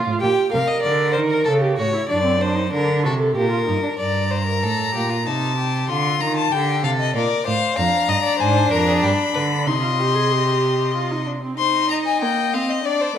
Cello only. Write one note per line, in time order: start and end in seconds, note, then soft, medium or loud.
0.06 0.13 A2 medium
0.22 0.30 A#2 medium
0.54 0.61 C3 medium
0.85 1.17 D3 medium
1.16 1.47 D#3 medium
1.48 1.78 C#3 medium
1.79 1.87 A2 medium
2.10 2.72 F#2 medium
2.73 3.07 D3 medium
3.05 3.36 C3 medium
3.36 3.67 A#2 medium
3.68 3.76 G2 medium
4.00 4.64 G2 medium
4.63 4.96 A2 medium
4.95 5.28 A#2 medium
5.27 5.89 C3 medium
5.89 6.20 D3 medium
6.21 6.52 D#3 medium
6.52 6.84 D3 medium
6.83 7.14 C3 medium
7.14 7.22 A#2 medium
7.47 7.55 A2 medium
7.78 7.86 F2 medium
8.08 8.16 G2 medium
8.40 8.70 G#2 medium
8.70 9.02 F2 medium
9.02 9.10 G2 medium
9.34 9.68 D3 medium
9.66 11.27 C3 medium